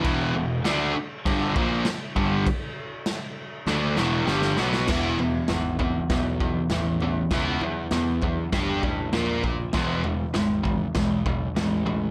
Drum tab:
CC |x---x---x---x---|x---x-----------|x---------------|----------------|
SD |----o-------o---|----o---o-o-oooo|o---o---o---o---|o---o---o---o---|
FT |----------------|----------------|o-o-o-o-o-o-o-o-|o-o-o-o-o-o-o-o-|
BD |o-------o-o---o-|o---------------|o-----o-o-o-----|o-----o-o-o---o-|

CC |----------------|
SD |o---o---o---o---|
FT |o-o-o-o-o-o-o-o-|
BD |o-----o-o-o-----|